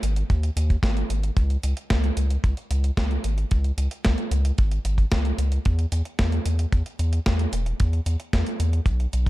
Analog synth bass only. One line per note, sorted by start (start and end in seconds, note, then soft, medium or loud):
0.03 0.23 G#1 loud
0.30 0.50 D#2 medium
0.56 0.77 D#2 loud
0.83 1.03 G#1 medium
1.10 1.30 G#1 medium
1.37 1.57 C#2 loud
1.64 1.74 C#2 medium
1.91 2.11 C#2 medium
2.17 2.37 C#2 medium
2.44 2.54 C#2 medium
2.71 2.91 C#2 medium
2.97 3.18 C#2 medium
3.24 3.45 G#1 medium
3.52 3.72 C#2 medium
3.78 3.88 C#2 medium
4.06 4.15 C#2 medium
4.31 4.52 C#2 loud
4.59 4.79 G#1 medium
4.85 5.05 G#1 medium
5.12 5.32 C#2 medium
5.38 5.59 C#2 medium
5.66 5.86 E2 loud
5.92 6.02 E2 medium
6.19 6.39 E2 medium
6.46 6.66 E2 medium
6.72 6.83 E2 medium
6.99 7.20 E2 medium
7.27 7.47 E2 medium
7.53 7.73 E1 medium
7.80 8.00 E2 medium
8.06 8.16 E2 medium
8.33 8.43 E2 medium
8.60 8.80 E2 loud
8.86 9.07 B1 medium
9.13 9.30 B1 medium